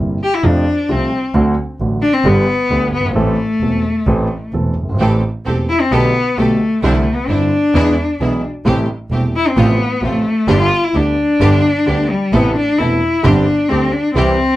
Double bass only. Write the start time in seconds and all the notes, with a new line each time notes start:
0.00 G1
0.43 F2
0.90 C2
1.34 D2
1.80 A1
2.24 G1
2.70 D2
2.93 G1
3.15 A1
3.61 E1
4.07 A1
4.53 E1
4.77 G1
4.99 A1
5.46 E1
5.91 B1
6.38 B1
6.83 C2
7.29 G1
7.75 E2
8.20 B1
8.65 A1
9.11 E1
9.57 A1
10.03 A1
10.48 G1
10.94 D2
11.40 G1
11.87 D2
12.33 A1
12.79 E1
13.24 G1
13.70 D2
14.15 C2